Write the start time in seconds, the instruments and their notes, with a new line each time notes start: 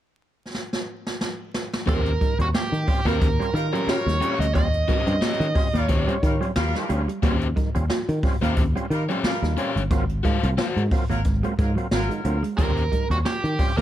0.54 snare
0.73 snare
1.07 snare
1.21 snare
1.54 snare
1.73 snare
1.86 picked electric bass D#2, tonewheel organ G3 C4 C#4 F4, clean electric guitar A#3, overdriven electric guitar C#4 G4 C5, lead electric guitar A#4, kick, closed hi-hat
2.06 closed hi-hat
2.21 tonewheel organ D#3, clean electric guitar G3, kick, closed hi-hat
2.39 picked electric bass D#2, tonewheel organ G3 C4 C#4 F4, lead electric guitar F#4, muted clean electric guitar stroke, closed hi-hat
2.54 clean electric guitar A#3, tonewheel organ C#4 F4, lead electric guitar G4, muted picked electric bass stroke, snare
2.72 picked electric bass D#3, tonewheel organ D#3, muted clean electric guitar stroke, closed hi-hat
2.87 tonewheel organ G3 C4 C#4 F4, kick, open hi-hat
3.05 picked electric bass D#2, horn section G3 F4 A#4, clean electric guitar A#3, overdriven electric guitar C#4 G4 C5, lead electric guitar A#4, closed hi-hat
3.21 picked electric bass D#2, kick, closed hi-hat
3.39 tonewheel organ G3 C4 C#4 F4, clean electric guitar G3, closed hi-hat
3.53 picked electric bass D#3, tonewheel organ D#3, horn section G3 F4 A#4, lead electric guitar A#4, muted clean electric guitar stroke, closed hi-hat
3.72 clean electric guitar F#3, tonewheel organ G3 C4 C#4 F4, overdriven electric guitar C#4 G4 C#5, closed hi-hat
3.87 horn section G3 F4 A#4, tonewheel organ C#4 F4, lead electric guitar C#5, muted picked electric bass stroke, snare
4.06 picked electric bass D#2, tonewheel organ D#3, clean electric guitar G3, snare, closed hi-hat
4.21 tonewheel organ G3 C4 C#4 F4, overdriven electric guitar C#4 G4 C#5, closed hi-hat
4.39 picked electric bass D2, clean electric guitar G3, lead electric guitar D#5, closed hi-hat
4.54 picked electric bass D#2, tonewheel organ G3 C4 C#4 F4, clean electric guitar A#3, lead electric guitar D#5, kick, closed hi-hat
4.73 closed hi-hat
4.88 tonewheel organ D#3, clean electric guitar G3, overdriven electric guitar C#4 G4 C5, kick, closed hi-hat
5.07 picked electric bass G2, tonewheel organ G3 C4 C#4 F4, muted clean electric guitar stroke, closed hi-hat
5.21 clean electric guitar A#3, overdriven electric guitar C#4 G4 C#5, tonewheel organ C#4 F4, muted picked electric bass stroke, snare
5.40 picked electric bass D#3, tonewheel organ D#3, muted clean electric guitar stroke, closed hi-hat
5.54 tonewheel organ G3 C4 C#4 F4, kick, open hi-hat
5.74 picked electric bass D#2, horn section G3 F4 A#4, clean electric guitar A#3, closed hi-hat
5.82 lead electric guitar C#5
5.88 picked electric bass D#2, overdriven electric guitar C#4 G4 C5, kick, closed hi-hat
6.07 tonewheel organ G3 C4 C#4 F4, clean electric guitar G3, closed hi-hat
6.22 tonewheel organ D#3, picked electric bass D#3, horn section G3 F4 A#4, muted clean electric guitar stroke, kick, closed hi-hat
6.41 clean electric guitar F#3, tonewheel organ G3 C4 C#4 F4, closed hi-hat
6.55 picked electric bass D#2, horn section G3 F4 A#4, tonewheel organ C#4 F4, snare
6.74 tonewheel organ D#3, clean electric guitar G3, snare, closed hi-hat
6.89 picked electric bass D2, tonewheel organ G3 C4 C#4 F4, muted clean electric guitar stroke, closed hi-hat
7.08 clean electric guitar G3, closed hi-hat
7.22 picked electric bass D#2, tonewheel organ G3 C4 C#4 F4, clean electric guitar A#3, overdriven electric guitar C#4 G4 C5, kick, closed hi-hat
7.41 closed hi-hat
7.56 tonewheel organ D#3, clean electric guitar G3, kick, closed hi-hat
7.75 picked electric bass D#2, tonewheel organ G3 C4 C#4 F4, muted clean electric guitar stroke, closed hi-hat
7.90 clean electric guitar A#3, tonewheel organ C#4 F4, muted picked electric bass stroke, snare
8.08 picked electric bass D#3, tonewheel organ D#3, muted clean electric guitar stroke, closed hi-hat
8.23 tonewheel organ G3 C4 C#4 F4, kick, open hi-hat
8.41 picked electric bass D#2, horn section G3 F4 A#4, clean electric guitar A#3, overdriven electric guitar C#4 G4 C5, closed hi-hat
8.56 picked electric bass D#2, kick, closed hi-hat
8.76 clean electric guitar G3, tonewheel organ G3 C4 C#4 F4, closed hi-hat
8.90 picked electric bass D#3, tonewheel organ D#3, horn section G3 F4 A#4, muted clean electric guitar stroke, closed hi-hat
9.09 clean electric guitar F#3, tonewheel organ G3 C4 C#4 F4, overdriven electric guitar C#4 G4 C#5, closed hi-hat
9.24 horn section G3 F4 A#4, tonewheel organ C#4 F4, muted picked electric bass stroke, snare
9.42 picked electric bass D#2, tonewheel organ D#3, clean electric guitar G3, snare, closed hi-hat
9.57 tonewheel organ G3 C4 C#4 F4, overdriven electric guitar C#4 G4 C#5, muted clean electric guitar stroke, closed hi-hat
9.76 picked electric bass G1, clean electric guitar G3, closed hi-hat
9.91 picked electric bass G#1, tonewheel organ F#3 A#3 C4 F4, clean electric guitar A#3, kick, closed hi-hat
10.09 closed hi-hat
10.23 tonewheel organ G#2 D#3, clean electric guitar G#3, overdriven electric guitar F#4 C5 F5, kick, closed hi-hat
10.43 picked electric bass C2, tonewheel organ F#3 A#3 C4 F4, muted clean electric guitar stroke, closed hi-hat
10.58 clean electric guitar A#3, tonewheel organ C4 F4, overdriven electric guitar F#4 C5 F#5, muted picked electric bass stroke, snare
10.76 picked electric bass G#2, tonewheel organ G#2 D#3, muted clean electric guitar stroke, closed hi-hat
10.91 tonewheel organ F#3 A#3 C4 F4, kick, open hi-hat
11.09 picked electric bass G#1, horn section F#3 F4 A#4, clean electric guitar A#3, closed hi-hat
11.24 picked electric bass G#1, kick, closed hi-hat
11.43 tonewheel organ F#3 A#3 C4 F4, clean electric guitar G#3, closed hi-hat
11.58 picked electric bass G#2, tonewheel organ G#2 D#3, horn section F#3 F4 A#4, muted clean electric guitar stroke, kick, closed hi-hat
11.75 clean electric guitar F#3, tonewheel organ F#3 A#3 C4 F4, closed hi-hat
11.91 picked electric bass G#1, horn section F#3 F4 A#4, tonewheel organ C4 F4, snare
12.09 tonewheel organ G#2 D#3, clean electric guitar G#3, closed hi-hat
12.24 picked electric bass D2, tonewheel organ F#3 A#3 C4 F4, muted clean electric guitar stroke, closed hi-hat
12.43 clean electric guitar G#3, closed hi-hat
12.58 picked electric bass D#2, tonewheel organ G3 C4 C#4 F4, clean electric guitar A#3, overdriven electric guitar C#4 G4 C5, lead electric guitar A#4, kick, closed hi-hat
12.77 closed hi-hat
12.92 tonewheel organ D#3, clean electric guitar G3, kick, closed hi-hat
13.10 picked electric bass D#2, tonewheel organ G3 C4 C#4 F4, lead electric guitar F#4, muted clean electric guitar stroke, closed hi-hat
13.25 clean electric guitar A#3, tonewheel organ C#4 F4, lead electric guitar G4, muted picked electric bass stroke, snare
13.44 picked electric bass D#3, tonewheel organ D#3, muted clean electric guitar stroke, closed hi-hat
13.59 tonewheel organ G3 C4 C#4 F4, kick, open hi-hat
13.77 picked electric bass D#2, horn section G3 F4 A#4, clean electric guitar A#3, overdriven electric guitar G4 C5, lead electric guitar A#4